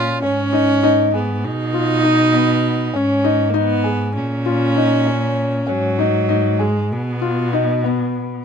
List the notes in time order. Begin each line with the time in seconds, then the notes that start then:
Already playing: A#2 C#4 F4
0.22 G#2 C#4
0.53 D#4
0.83 D#4
1.14 B3 G#4
1.44 B2 D#4
1.74 F4
2.03 D#4
2.33 B3
2.94 G#2 C#4
3.24 D#4
3.49 A#3
3.54 B3 D#4
3.84 G#4
4.16 A#2 C#4
4.46 F4
4.76 D#4
5.06 C#4
5.67 G#2 F#3 C#4
5.99 D#4
6.29 D#4
6.59 G#3 G#4
6.91 B2 B3
7.22 F4
7.53 D#4
7.84 B3